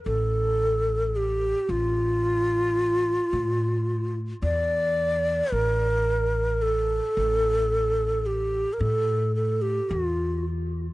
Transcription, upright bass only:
\new Staff \with { instrumentName = "Upright bass" } { \clef bass \time 10/8 \tempo 4 = 55 a,,4. a,,4. a,4 e,4 | a,,4. a,,4. a,4 e,4 | }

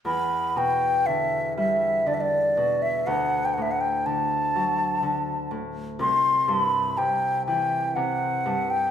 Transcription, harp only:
\new Staff \with { instrumentName = "Harp" } { \clef bass \time 3/4 \key e \minor \tempo 4 = 61 e,8 b,8 d8 g8 d8 b,8 | d,8 a,8 d8 fis8 d8 a,8 | c,8 g,8 c8 e8 c8 g,8 | }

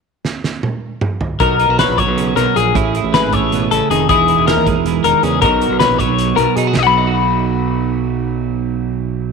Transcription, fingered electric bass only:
\new Staff \with { instrumentName = "Fingered electric bass" } { \clef bass \time 7/8 \key b \major \tempo 4 = 158 r2. r8 | b,,8. b,,8 ais,,8 b,,8. b,,16 r16 ais,,8 | a,,8. a,,8 gis,,8 a,,8. a,,16 r16 eis,,8 | e,,8. e,,8 dis,8 e,,8. e,,16 r16 e,8 |
b,,8. b,,8 ais,,8 b,,8. b,,16 r16 b,8 | b,,2.~ b,,8~ | b,,2.~ b,,8 | }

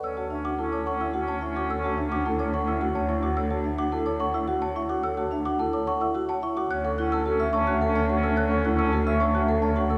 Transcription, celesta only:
\new Staff \with { instrumentName = "Celesta" } { \time 3/4 \key d \major \tempo 4 = 108 e'''16 fis''16 r16 d'''16 a''16 d'''16 cis'''16 e'''16 fis''16 a''16 cis'''16 d'''16 | e'''16 fis''16 r16 d'''16 a''16 d'''16 cis'''16 e'''16 fis''16 a''16 cis'''16 d'''16 | e'''16 fis''16 r16 d'''16 a''16 d'''16 cis'''16 e'''16 fis''16 a''16 cis'''16 d'''16 | e'''16 fis''16 r16 d'''16 a''16 d'''16 cis'''16 e'''16 fis''16 a''16 cis'''16 d'''16 |
fis'''16 fis''16 fis'''16 e'''16 a''16 e'''16 cis'''16 fis'''16 fis''16 a''16 cis'''16 e'''16 | fis'''16 fis''16 fis'''16 e'''16 a''16 e'''16 cis'''16 fis'''16 fis''16 a''16 cis'''16 e'''16 | }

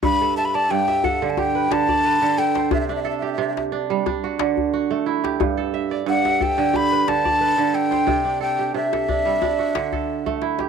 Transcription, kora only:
<<
  \new Staff \with { instrumentName = "Kora" } { \time 4/4 \key g \major \tempo 4 = 90 r16 a'16 e''16 d''8 e''16 a'8 g'16 b'8 d''16 b'8 a'16 c''16~ | c''16 d'16 a'16 g'8. d'8 d'16 fis'8. fis'8 e'16 g'16~ | g'16 a'16 e''16 d''8 e''16 a'8 g'16 b'8 d''16 b'8 a'16 c''16~ | c''16 d'16 a'16 g'8 a'16 d'8 d'16 fis'8 a'8. e'16 g'16 | }
  \new Staff \with { instrumentName = "Kora" } { \clef bass \time 4/4 \key g \major g,8 r8 g,8 r16 d8 r16 d8 r16 d8 r16 | c8 r8 c8 r16 g16 r8 d8 r16 a8 r16 | g,8 r8 g,8 r16 d8 r16 d8 r16 d8 r16 | c8 r8 c8 r16 g16 r8 d8 r16 a8 r16 | }
>>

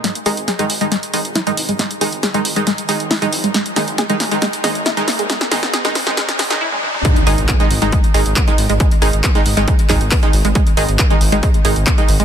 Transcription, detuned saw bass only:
\new Staff \with { instrumentName = "Detuned saw bass" } { \clef bass \time 4/4 \key gis \minor \tempo 4 = 137 r8 gis,,16 gis,,16 r8 gis,,16 gis,,16 r8 gis,,16 gis,,16 r8 gis,,16 gis,,16 | r8 gis,,16 gis,,16 r8 gis,,16 gis,,16 r8 gis,,16 gis,,16 r8 gis,,16 gis,,16 | r8 gis,,16 gis,,16 r8 gis,,16 gis,,16 r8 gis,,16 gis,,16 r8 gis,,16 gis,,16 | r8 gis,,16 gis,,16 r8 gis,,16 gis,,16 r8 gis,,16 gis,,16 r4 |
r8 gis,,16 gis,,16 r8 gis,,16 gis,,16 r8 gis,,16 gis,,16 r8 gis,,16 gis,,16 | r8 gis,,16 gis,,16 r8 gis,,16 gis,,16 r8 gis,,16 gis,,16 r8 gis,,16 gis,,16 | r8 gis,,16 gis,,16 r8 gis,,16 gis,,16 r8 gis,,16 gis,,16 r8 gis,,16 gis,,16 | }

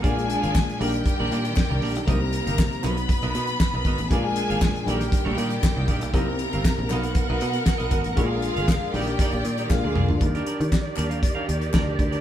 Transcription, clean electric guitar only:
\new Staff \with { instrumentName = "Clean electric guitar" } { \time 4/4 \key ees \major \tempo 4 = 118 <bes f' aes' d''>8 r16 <bes f' aes' f''>16 r8 <d' g' bes' d''>8 r16 <d' g' bes' d''>16 <d' g' bes' d''>16 r8 <d' g' bes' d''>16 <d' g' bes' d''>8 | <ees' g' bes' ees''>8 r16 <ees' g' bes' f''>16 r8 <b fis' ais' dis''>8 r16 <b fis' ais' dis''>16 <b fis' ais' dis''>16 r8 <b fis' ais' dis''>16 <b fis' ais' dis''>8 | <bes f' aes' d''>8 r16 <bes f' aes' f''>16 r8 <bes ees' g' d''>8 r16 <bes ees' g' d''>16 <bes ees' g' d''>16 r8 <bes ees' g' d''>16 <bes ees' g' d''>8 | <c' g' bes' ees''>8 r16 <c' g' bes' f''>16 r8 <b fis' ais' dis''>8 r16 <b fis' ais' dis''>16 <b fis' ais' dis''>16 r8 <b fis' ais' dis''>16 <b fis' ais' dis''>16 r16 |
<bes f' aes' d''>8 r16 <bes f' aes' f''>16 r8 <bes ees' g' d''>8 <bes ees' g' d''>8 r16 <bes ees' g' d''>16 r16 <bes f' aes' d''>16 <bes f' aes' d''>8 | r16 <d' g' bes' d''>16 <d' g' bes' d''>16 r8. <d' g' bes' d''>16 <d' g' bes' f''>16 r16 <d' g' bes' f''>8 r16 <d' g' bes' d''>8 r16 <d' g' bes' d''>16 | }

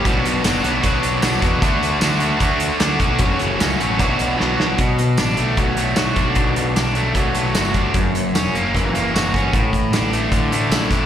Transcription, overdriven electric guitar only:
\new Staff \with { instrumentName = "Overdriven electric guitar" } { \time 4/4 \key b \minor \tempo 4 = 152 <b, fis b d' fis'>4 <fis b d' fis'>8 <b d' fis'>8 <fis b d' fis'>4 <b, fis b d' fis'>8 <b d' fis'>8 | <d a d' fis'>4 <d a d' fis'>8 <a d' fis'>8 <d a d' fis'>4 <d a d' fis'>8 <a d' fis'>8 | <fis, cis fis a cis' fis'>4 <fis a cis' fis'>8 <fis a cis' fis'>8 <b, fis b d' fis'>4 <b, fis b d' fis'>8 <b d' fis'>8 | b,4 d'8 a8 fis8 a8 fis'8 d'8 |
b,4 d'8 a8 fis8 a8 fis'8 d'8 | fis,4 cis'8 ais8 e8 ais8 fis'8 cis'8 | a,4 d'8 a8 d8 a8 e'8 d'8 | }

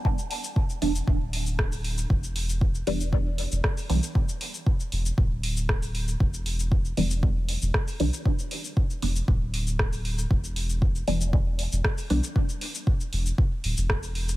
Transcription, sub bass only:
\new Staff \with { instrumentName = "Sub bass" } { \clef bass \time 4/4 \key e \minor \tempo 4 = 117 r4. e,,16 r16 d,,2 | e,,4. e,,4~ e,,16 e,,16 r8 b,,16 r16 | r4. e,,16 r16 d,,2 | e,,4. e,,4~ e,,16 e,,16 r8 b,,16 r16 |
r4. e,,16 r16 d,,2 | e,,4. e,,4~ e,,16 e,,16 r8 b,,16 r16 | r4. e,,16 r8. d,,16 e,,4~ e,,16 | }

